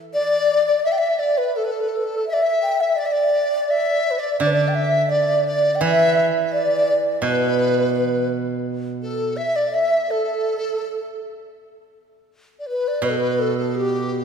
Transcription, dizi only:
0, 0, Header, 1, 2, 480
1, 0, Start_track
1, 0, Tempo, 715990
1, 95, Time_signature, 4, 2, 24, 8
1, 2494, Tempo, 707547
1, 5854, Tempo, 725514
1, 9540, End_track
2, 0, Start_track
2, 0, Title_t, "Dizi"
2, 0, Program_c, 0, 73
2, 90, Note_on_c, 0, 74, 96
2, 428, Note_off_c, 0, 74, 0
2, 449, Note_on_c, 0, 74, 72
2, 561, Note_off_c, 0, 74, 0
2, 565, Note_on_c, 0, 76, 89
2, 617, Note_on_c, 0, 79, 78
2, 627, Note_off_c, 0, 76, 0
2, 658, Note_on_c, 0, 76, 89
2, 668, Note_off_c, 0, 79, 0
2, 799, Note_on_c, 0, 74, 78
2, 809, Note_off_c, 0, 76, 0
2, 923, Note_on_c, 0, 71, 70
2, 933, Note_off_c, 0, 74, 0
2, 1048, Note_on_c, 0, 69, 68
2, 1058, Note_off_c, 0, 71, 0
2, 1103, Note_on_c, 0, 71, 70
2, 1113, Note_off_c, 0, 69, 0
2, 1149, Note_on_c, 0, 69, 65
2, 1159, Note_off_c, 0, 71, 0
2, 1210, Note_on_c, 0, 71, 66
2, 1220, Note_off_c, 0, 69, 0
2, 1262, Note_on_c, 0, 69, 60
2, 1272, Note_off_c, 0, 71, 0
2, 1315, Note_on_c, 0, 71, 64
2, 1325, Note_off_c, 0, 69, 0
2, 1371, Note_on_c, 0, 69, 72
2, 1381, Note_off_c, 0, 71, 0
2, 1528, Note_off_c, 0, 69, 0
2, 1532, Note_on_c, 0, 76, 81
2, 1565, Note_on_c, 0, 74, 74
2, 1575, Note_off_c, 0, 76, 0
2, 1625, Note_on_c, 0, 76, 83
2, 1635, Note_off_c, 0, 74, 0
2, 1883, Note_off_c, 0, 76, 0
2, 1887, Note_on_c, 0, 76, 74
2, 2000, Note_on_c, 0, 74, 80
2, 2011, Note_off_c, 0, 76, 0
2, 2050, Note_on_c, 0, 76, 71
2, 2060, Note_off_c, 0, 74, 0
2, 2094, Note_on_c, 0, 74, 82
2, 2104, Note_off_c, 0, 76, 0
2, 2484, Note_on_c, 0, 76, 89
2, 2494, Note_off_c, 0, 74, 0
2, 2817, Note_on_c, 0, 74, 75
2, 2827, Note_off_c, 0, 76, 0
2, 2956, Note_off_c, 0, 74, 0
2, 2960, Note_on_c, 0, 74, 81
2, 3040, Note_off_c, 0, 74, 0
2, 3044, Note_on_c, 0, 74, 78
2, 3147, Note_on_c, 0, 79, 57
2, 3157, Note_off_c, 0, 74, 0
2, 3189, Note_on_c, 0, 76, 85
2, 3199, Note_off_c, 0, 79, 0
2, 3423, Note_off_c, 0, 76, 0
2, 3427, Note_on_c, 0, 74, 79
2, 3661, Note_off_c, 0, 74, 0
2, 3682, Note_on_c, 0, 74, 84
2, 3873, Note_on_c, 0, 79, 60
2, 3884, Note_off_c, 0, 74, 0
2, 3920, Note_on_c, 0, 76, 93
2, 3930, Note_off_c, 0, 79, 0
2, 4223, Note_off_c, 0, 76, 0
2, 4347, Note_on_c, 0, 76, 54
2, 4394, Note_on_c, 0, 74, 86
2, 4404, Note_off_c, 0, 76, 0
2, 4685, Note_off_c, 0, 74, 0
2, 4880, Note_on_c, 0, 71, 81
2, 5338, Note_off_c, 0, 71, 0
2, 5358, Note_on_c, 0, 71, 64
2, 5588, Note_off_c, 0, 71, 0
2, 6086, Note_on_c, 0, 69, 77
2, 6314, Note_on_c, 0, 76, 90
2, 6324, Note_off_c, 0, 69, 0
2, 6441, Note_on_c, 0, 74, 78
2, 6450, Note_off_c, 0, 76, 0
2, 6562, Note_on_c, 0, 76, 82
2, 6572, Note_off_c, 0, 74, 0
2, 6804, Note_on_c, 0, 69, 79
2, 6814, Note_off_c, 0, 76, 0
2, 7538, Note_off_c, 0, 69, 0
2, 8447, Note_on_c, 0, 74, 44
2, 8496, Note_on_c, 0, 71, 64
2, 8506, Note_off_c, 0, 74, 0
2, 8733, Note_off_c, 0, 71, 0
2, 8737, Note_on_c, 0, 71, 73
2, 8780, Note_on_c, 0, 69, 61
2, 8790, Note_off_c, 0, 71, 0
2, 8832, Note_on_c, 0, 71, 76
2, 8842, Note_off_c, 0, 69, 0
2, 8978, Note_on_c, 0, 69, 72
2, 8987, Note_off_c, 0, 71, 0
2, 9097, Note_off_c, 0, 69, 0
2, 9099, Note_on_c, 0, 69, 56
2, 9216, Note_on_c, 0, 67, 72
2, 9226, Note_off_c, 0, 69, 0
2, 9540, Note_off_c, 0, 67, 0
2, 9540, End_track
0, 0, End_of_file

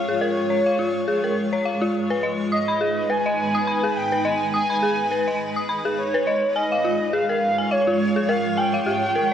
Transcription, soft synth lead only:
0, 0, Header, 1, 2, 480
1, 0, Start_track
1, 0, Tempo, 576923
1, 1615, Time_signature, 4, 2, 24, 8
1, 7768, End_track
2, 0, Start_track
2, 0, Title_t, "Soft synth lead"
2, 0, Program_c, 0, 80
2, 0, Note_on_c, 0, 77, 112
2, 175, Note_on_c, 0, 73, 92
2, 188, Note_off_c, 0, 77, 0
2, 1375, Note_off_c, 0, 73, 0
2, 2095, Note_on_c, 0, 75, 107
2, 2574, Note_on_c, 0, 80, 123
2, 2587, Note_off_c, 0, 75, 0
2, 3296, Note_on_c, 0, 79, 100
2, 3308, Note_off_c, 0, 80, 0
2, 3534, Note_on_c, 0, 80, 116
2, 3547, Note_off_c, 0, 79, 0
2, 3771, Note_off_c, 0, 80, 0
2, 3776, Note_on_c, 0, 80, 102
2, 4462, Note_off_c, 0, 80, 0
2, 4975, Note_on_c, 0, 73, 95
2, 5421, Note_off_c, 0, 73, 0
2, 5455, Note_on_c, 0, 75, 102
2, 5936, Note_on_c, 0, 77, 106
2, 5948, Note_off_c, 0, 75, 0
2, 6416, Note_on_c, 0, 73, 109
2, 6428, Note_off_c, 0, 77, 0
2, 6896, Note_on_c, 0, 77, 112
2, 6908, Note_off_c, 0, 73, 0
2, 7136, Note_on_c, 0, 79, 115
2, 7149, Note_off_c, 0, 77, 0
2, 7768, Note_off_c, 0, 79, 0
2, 7768, End_track
0, 0, End_of_file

